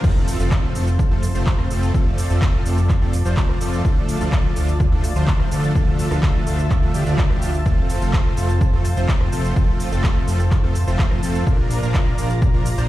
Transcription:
0.04 F1 F3 A3 C4 F4 A4 C5 A5, kick, crash, impact, cabasa
0.28 open hi-hat, cabasa
0.40 F1 F3 A3 C4 F4 A4, cabasa
0.51 kick, clap, cabasa
0.75 F1 F3 A3 C4 F4 A4, open hi-hat, cabasa
0.87 cabasa
0.99 kick, cabasa
1.11 F1 F3 A3 C4 F4 A4
1.23 open hi-hat, cabasa
1.35 F1 F3 A3 C4 F4 C5, cabasa
1.47 kick, clap, cabasa
1.59 F1 F3 A3 C4 F4 C5, cross-stick
1.71 F1 F3 A3 C4 F4 A4, open hi-hat, cabasa
1.83 cabasa
1.94 F1 F3 A3 C4 F4 A4 D5, kick, cabasa
2.18 open hi-hat, cabasa
2.30 F1 F3 A3 C4 F4 A4, cabasa
2.42 kick, clap, cabasa
2.66 F1 F3 A3 C4 F4 A4, open hi-hat, cabasa
2.78 cabasa
2.89 kick, clap, cabasa
3.01 F1 F3 A3 C4 F4 A4
3.13 open hi-hat, cabasa
3.25 F1 F3 A3 C4 F4 C5, cabasa
3.37 kick, clap, cabasa
3.49 F1 F3 A3 C4 F4 C5, cross-stick
3.61 F2 F3 A3 C4 F4 A4, open hi-hat, cabasa
3.73 cabasa
3.85 D2 F3 A3 D4 F4 A4, kick, cabasa
4.09 open hi-hat, cabasa
4.21 D2 F3 A3 D4 F4 A4, cabasa
4.32 kick, clap, cabasa
4.56 D2 F3 A3 D4 F4 A4, open hi-hat, cabasa
4.68 cabasa
4.80 kick, cabasa
4.92 D2 F3 A3 D4 F4 A4
5.04 open hi-hat, cabasa
5.16 D2 F3 A3 D4 F4 C5, cabasa
5.28 kick, clap, cabasa
5.40 D2 F3 A3 D4 F4 C5, cross-stick
5.51 D2 F3 A3 D4 F4 A4, open hi-hat, cabasa
5.64 cabasa
5.75 D2 F3 A3 D4 F4 A4 E5, kick, cabasa
5.99 open hi-hat, cabasa
6.11 D2 F3 A3 D4 F4 A4, cross-stick, cabasa
6.23 kick, clap, cabasa
6.47 D2 F3 A3 D4 F4 A4, open hi-hat, cabasa
6.59 cabasa
6.70 kick, clap, cabasa
6.82 D2 F3 A3 D4 F4 A4
6.94 D2 F3 A3 D4 F4 G4, open hi-hat, cabasa
7.06 D2 F3 A3 D4 F4 D5, cabasa
7.18 kick, clap, cabasa
7.30 D2 F3 A3 D4 F4 G4, cross-stick
7.42 open hi-hat, cabasa
7.54 cabasa
7.66 F1 F3 A3 C4 F4 A4 C5, kick, cabasa
7.90 open hi-hat, cabasa
8.01 F1 F3 A3 C4 F4 A4, cabasa
8.13 kick, clap, cabasa
8.37 F1 F3 A3 C4 F4 A4, open hi-hat, cabasa
8.49 cabasa
8.61 kick, cabasa
8.73 F1 F3 A3 C4 F4 A4
8.85 open hi-hat, cabasa
8.97 F1 F3 A3 C4 F4 C5, cabasa
9.09 kick, clap, cabasa
9.21 F1 F3 A3 C4 F4 C5, cross-stick
9.32 F1 F3 A3 C4 F4 A4, open hi-hat, cabasa
9.45 cabasa
9.56 F1 F3 A3 C4 F4 A4, kick, cabasa
9.80 open hi-hat, cabasa
9.92 F1 F3 A3 C4 F4 A4, cabasa
10.04 kick, clap, cabasa
10.28 F1 F3 A3 C4 F4 A4, open hi-hat, cabasa
10.40 cabasa
10.51 kick, clap, cabasa
10.63 F1 F3 A3 C4 F4 A4
10.75 open hi-hat, cabasa
10.87 F1 F3 A3 C4 F4 C5, cabasa
10.99 kick, clap, cabasa
11.11 F2 F3 A3 C4 F4 C5, cross-stick
11.23 F2 F3 A3 C4 F4 A4, open hi-hat, cabasa
11.35 cabasa
11.47 A#1 F3 A#3 D4 F4 A#4 D5 A#5, kick, cabasa
11.71 open hi-hat, cabasa
11.82 A#1 F3 A#3 D4 F4 A#4, cabasa
11.94 kick, clap, cabasa
12.18 A#1 F3 A#3 D4 F4 A#4, open hi-hat, cabasa
12.30 cabasa
12.42 kick, cabasa
12.54 A#1 F3 A#3 D4 F4 A#4
12.66 open hi-hat, cabasa
12.78 A#1 F3 A#3 D4 F4 C5, cabasa

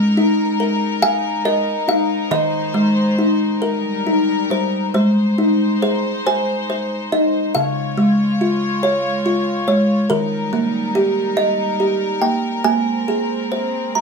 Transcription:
Already playing: G#3 D#4 A#4
0.17 D#4
0.60 A#4
1.02 F5 G#5
1.45 A#4 D#5
1.88 D#4 F5
2.30 D#3 C5 D#5
2.74 G#3
3.19 D#4
3.62 G3 A#4
4.07 D#4
4.50 G3 C5
4.94 G#3 D#4 C5
5.38 D#4
5.82 G#4 C5
6.27 C5 G#5
6.70 C5
7.12 D#4 D#5
7.55 C#3 G#3 F4 C#5 F5
7.98 G#3
8.41 F4
8.83 C#5
9.26 F4
9.68 G#3 C#5
10.10 D#3 G3 D#4 A#4
10.53 A#3
10.95 G4
11.37 D#5
11.80 G4
12.22 A#3 G5
12.64 G#3 A#3 C4 G#5
13.08 G#4
13.52 C5
13.95 A#5

